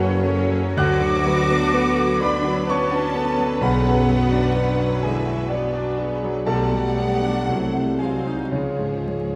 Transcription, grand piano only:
0.00 0.72 F#2 medium
0.00 0.50 F#3 medium
0.00 0.23 C#4 medium
0.00 0.79 F#4 medium
0.00 0.78 G#4 medium
0.00 0.79 A4 medium
0.00 0.78 B4 medium
0.00 0.79 C#5 medium
0.00 0.78 F#5 loud
0.00 0.79 G#5 loud
0.00 0.78 A5 loud
0.00 0.78 B5 loud
0.23 0.66 C#4 medium
0.50 0.76 F#3 medium
0.77 3.58 D2 medium
0.77 2.18 F#5 medium
0.77 2.18 D6 medium
0.77 2.17 F#6 loud
1.01 1.40 D3 medium
1.26 1.64 F#3 medium
1.50 1.88 B3 medium
1.74 2.12 B4 medium
1.98 2.35 F#4 medium
2.21 2.58 B4 medium
2.21 2.66 D5 medium
2.21 2.65 D6 loud
2.44 2.82 F#4 medium
2.67 3.05 B4 medium
2.67 3.59 C#6 loud
2.71 3.59 C#5 medium
2.91 3.29 F#4 medium
3.14 3.52 B3 medium
3.38 3.61 F#3 medium
3.61 6.43 B1 medium
3.61 4.54 B4 medium
3.61 5.00 F#5 medium
3.61 5.00 B5 loud
3.86 4.23 F#2 medium
4.08 4.46 F#3 medium
4.32 4.70 D4 medium
4.56 4.94 B4 medium
4.78 5.17 F#4 medium
5.03 5.48 G#4 medium
5.03 5.41 D5 medium
5.03 5.47 G#5 medium
5.26 5.50 F#4 medium
5.49 5.71 F#4 soft
5.49 5.88 D5 medium
5.49 5.95 F#5 medium
5.73 6.12 F#4 medium
5.98 6.37 D4 medium
6.23 6.47 F#3 medium
6.46 7.44 B1 medium
6.46 7.95 A4 medium
6.46 7.95 D5 medium
6.46 7.94 A5 medium
6.72 7.12 B2 medium
6.96 7.37 G3 medium
7.22 7.47 D4 medium
7.47 8.48 C2 medium
7.74 8.15 C3 soft
7.99 8.41 F#3 soft
7.99 8.48 G#4 soft
7.99 8.47 G#5 medium
8.26 8.52 D#4 soft
8.51 9.36 C#2 medium
8.51 9.36 F4 soft
8.51 9.36 C#5 soft
8.51 9.36 F5 medium
8.79 9.22 G#2 soft
9.05 9.36 G#3 soft

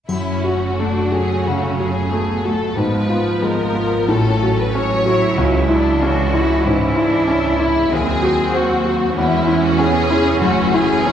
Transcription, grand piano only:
0.09 1.43 F#2 soft
0.44 1.01 F#4 soft
0.79 1.34 A3 soft
1.12 1.66 F#4 soft
1.47 2.00 C#3 soft
1.80 2.33 F#4 soft
2.11 2.65 A3 soft
2.45 2.78 F#4 soft
2.77 4.06 G#2 soft
3.09 3.63 F4 soft
3.42 3.97 G#3 soft
3.75 4.10 F4 soft
4.08 5.34 A2 soft
4.43 4.95 F#4 soft
4.75 5.26 C#4 soft
5.06 5.38 F#4 soft
5.38 6.61 C#2 soft
5.69 6.21 E4 soft
6.02 6.53 C#4 soft
6.34 6.84 E4 soft
6.65 7.16 G#2 soft
6.96 7.48 E4 soft
7.28 7.79 C#4 soft
7.59 7.92 E4 soft
7.92 9.13 D#2 soft
8.23 8.73 F#4 soft
8.53 9.04 C4 soft
8.85 9.17 F#4 soft
9.17 10.40 E2 soft
9.47 9.99 E4 soft
9.79 10.31 C#4 soft
10.10 10.43 E4 soft
10.41 11.12 F#2 medium
10.74 11.12 E4 soft
11.06 11.12 C#4 soft

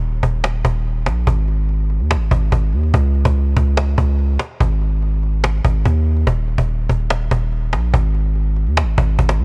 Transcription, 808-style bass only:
0.00 0.22 D#1 loud
0.23 0.63 D#1 loud
0.65 1.08 D#1 loud
1.06 1.26 A#1 medium
1.27 2.02 G#1 loud
2.00 2.17 D#2 medium
2.16 2.31 G#1 loud
2.31 2.51 G#1 loud
2.52 2.74 G#1 loud
2.73 2.93 D#2 loud
2.94 3.24 C#2 loud
3.25 3.55 C#2 loud
3.56 3.96 C#2 loud
3.98 4.38 C#2 loud
4.60 5.61 G#1 loud
5.64 5.85 G#1 loud
5.85 6.25 D#2 loud
6.27 6.57 D#1 loud
6.58 6.88 D#1 loud
6.90 7.30 D#1 loud
7.31 7.74 D#1 loud
7.73 7.93 A#1 loud
7.94 8.68 G#1 loud
8.67 8.84 D#2 loud
8.82 8.97 G#1 loud
8.98 9.18 G#1 loud
9.19 9.41 G#1 loud
9.39 9.45 D#2 loud

